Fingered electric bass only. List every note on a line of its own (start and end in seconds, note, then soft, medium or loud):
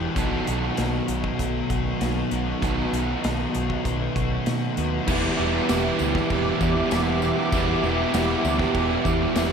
0.16 0.37 B1 loud
0.48 0.68 B1 medium
0.78 0.99 B1 medium
1.09 1.29 B1 medium
1.40 1.60 B1 medium
1.70 1.91 B1 medium
2.01 2.22 B1 medium
2.32 2.52 B1 medium
2.63 2.83 B1 medium
2.93 3.14 B1 medium
3.24 3.45 B1 medium
3.55 3.75 B1 medium
3.85 4.06 B1 medium
4.16 4.36 B1 medium
4.47 4.67 B2 medium
4.77 4.98 D#2 medium
5.08 5.28 E1 loud
5.39 5.58 E1 medium
5.70 5.89 E1 loud
6.00 6.19 D2 medium
6.30 6.50 E1 loud
6.61 6.80 E2 loud
6.92 7.31 E1 loud
7.53 7.72 E1 loud
7.83 8.03 E1 medium
8.14 8.33 E1 loud
8.44 8.64 D2 loud
8.75 8.94 E1 medium
9.05 9.25 E2 loud
9.36 9.52 E1 loud